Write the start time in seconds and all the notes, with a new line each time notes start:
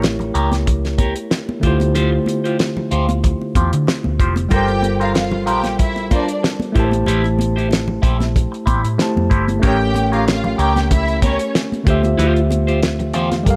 Already playing: A1 A3 E4 G4 A#4 C#5
0.02 muted clean electric guitar stroke, snare, closed hi-hat, muted conga
0.19 muted clean electric guitar stroke, closed hi-hat, low conga
0.34 C#2 G4 A#4 C#5, closed hi-hat
0.52 muted clean electric guitar stroke, snare, closed hi-hat, high conga
0.66 muted clean electric guitar stroke, kick, closed hi-hat, muted conga, low conga
0.85 snare, closed hi-hat
0.98 G4 A#4 C#5, kick, closed hi-hat, high conga
1.16 muted clean electric guitar stroke, closed hi-hat
1.31 muted clean electric guitar stroke, snare, closed hi-hat
1.49 muted conga, high conga
1.60 D2 D3 A3 E4 F4 G4, kick, closed hi-hat
1.64 F4 G4 C5
1.80 muted clean electric guitar stroke, closed hi-hat, high conga
1.95 F4 G4 C5, closed hi-hat, low conga
2.12 muted clean electric guitar stroke
2.26 muted clean electric guitar stroke, closed hi-hat, high conga
2.44 F4 G4 C5, closed hi-hat
2.59 snare, closed hi-hat, muted conga
2.77 muted clean electric guitar stroke, muted conga, low conga
2.91 D2 F4 G4 C5, closed hi-hat
3.09 muted clean electric guitar stroke, closed hi-hat, high conga
3.24 muted clean electric guitar stroke, kick, closed hi-hat, low conga
3.41 muted conga
3.55 E2 F4 G4 C5, kick, closed hi-hat, high conga
3.73 D3, muted clean electric guitar stroke, closed hi-hat
3.87 muted clean electric guitar stroke, snare, closed hi-hat, muted conga
4.04 D2, muted conga, high conga
4.19 F1 F4 G4 C5, kick, closed hi-hat
4.36 muted clean electric guitar stroke, closed hi-hat, high conga
4.49 G1 G3 F4 G4 A4 A#4 C5 G5, kick, closed hi-hat, low conga
4.54 A#4 C5
4.68 muted clean electric guitar stroke, closed hi-hat, muted conga
4.82 muted clean electric guitar stroke, closed hi-hat, high conga
5.00 F4 A#4 C5 F5, closed hi-hat
5.15 F4 F5, snare, closed hi-hat, muted conga
5.32 muted clean electric guitar stroke, muted conga, low conga
5.46 A#1 F4 G4 A#4 C5 G5, closed hi-hat
5.64 muted clean electric guitar stroke, snare, closed hi-hat, high conga
5.79 E4 E5, muted clean electric guitar stroke, kick, closed hi-hat, low conga
5.96 closed hi-hat, muted conga
6.11 D4 F4 A#4 C5 D5, kick, closed hi-hat, high conga
6.28 muted clean electric guitar stroke, closed hi-hat
6.43 muted clean electric guitar stroke, snare, closed hi-hat
6.60 closed hi-hat, muted conga, high conga
6.72 A1 A3 E4 G4 C5, kick, closed hi-hat
6.78 A#4 A5
6.84 C5
6.91 muted clean electric guitar stroke, closed hi-hat, high conga
7.06 A1 E4 G4 C5, closed hi-hat, muted conga, low conga
7.24 muted clean electric guitar stroke, closed hi-hat, muted conga
7.39 muted clean electric guitar stroke, closed hi-hat, high conga
7.56 E4 G4 C5, closed hi-hat
7.70 muted clean electric guitar stroke, snare, closed hi-hat, muted conga
7.88 muted clean electric guitar stroke, muted conga, low conga
8.02 A#1 E4 G4 C5, kick, closed hi-hat
8.20 muted clean electric guitar stroke, snare, closed hi-hat, high conga
8.36 kick, closed hi-hat, muted conga, low conga
8.52 muted clean electric guitar stroke, closed hi-hat
8.66 A1 E4 G4 C5, kick, closed hi-hat, high conga
8.84 A2, muted clean electric guitar stroke, closed hi-hat
8.98 A3 E4 G4 C5 A5, muted clean electric guitar stroke, snare, closed hi-hat
9.16 F2, high conga
9.30 G1 E4 G4 C5, kick, closed hi-hat
9.47 muted clean electric guitar stroke, closed hi-hat, high conga
9.59 A3 C#4 G4 A#4 C#5, kick, closed hi-hat, muted conga, low conga
9.63 A1 G4 A#4 C#5 G5
9.79 muted clean electric guitar stroke
9.94 muted clean electric guitar stroke, closed hi-hat, high conga
10.12 F4 G4 A#4 C#5 F5, closed hi-hat
10.27 F4 F5, muted clean electric guitar stroke, snare, closed hi-hat
10.44 muted clean electric guitar stroke, low conga
10.58 C#2 G4 A#4 C#5 G5, closed hi-hat
10.75 muted clean electric guitar stroke, snare, closed hi-hat, high conga
10.91 E4 E5, muted clean electric guitar stroke, kick, closed hi-hat, low conga
11.08 closed hi-hat
11.22 C#4 G4 A#4 C#5, kick, closed hi-hat, high conga
11.39 muted clean electric guitar stroke, closed hi-hat
11.55 muted clean electric guitar stroke, snare, closed hi-hat
11.72 closed hi-hat, high conga
11.83 D2 D3 A3 F4, kick, closed hi-hat
11.87 G4 C5 E5
12.03 muted clean electric guitar stroke, closed hi-hat, high conga
12.17 D2 F4 G4 C5, closed hi-hat, low conga
12.35 muted clean electric guitar stroke, closed hi-hat
12.50 muted clean electric guitar stroke, closed hi-hat, high conga
12.67 F4 G4 C5, closed hi-hat
12.83 muted clean electric guitar stroke, snare, closed hi-hat, muted conga
12.99 muted clean electric guitar stroke, closed hi-hat, low conga
13.14 E2 F4 G4 C5, closed hi-hat
13.32 muted clean electric guitar stroke, snare, closed hi-hat, high conga
13.43 G1 G3 G4 A4, muted clean electric guitar stroke, kick, closed hi-hat, low conga
13.48 A#4 F5